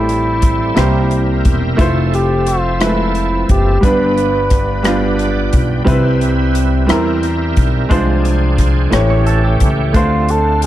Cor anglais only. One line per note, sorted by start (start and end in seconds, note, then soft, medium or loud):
0.00 1.42 E4 medium
2.14 2.49 G4 medium
2.48 2.81 F4 medium
2.82 3.45 E4 medium
3.51 3.86 G4 medium
3.84 5.19 B4 medium
9.96 10.32 F4 medium
10.30 10.63 A4 medium